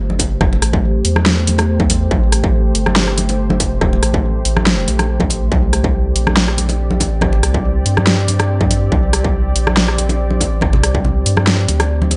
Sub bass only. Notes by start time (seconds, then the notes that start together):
Already playing: G1
0.23 F#1
0.48 F1
0.62 A1
1.05 E2
2.11 A1
2.75 G1
4.03 A1
4.45 A1
4.88 A#1
5.52 C2
6.15 A#1
7.04 A1
7.29 G#1
7.43 C2
7.85 G2
8.92 C2
9.56 A#1
10.45 A1
10.70 G#1
10.83 C2
11.26 G2
11.69 D2